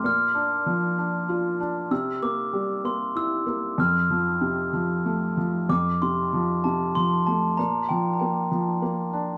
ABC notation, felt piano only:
X:1
M:3/4
L:1/8
Q:1/4=96
K:F
V:1 name="Felt piano" clef=bass
B,, D F, D F D | C, B, G, B, E B, | F,, F, C, F, A, F, | F,, C, F, C, F, A, |
B,, F, B, F, B, D |]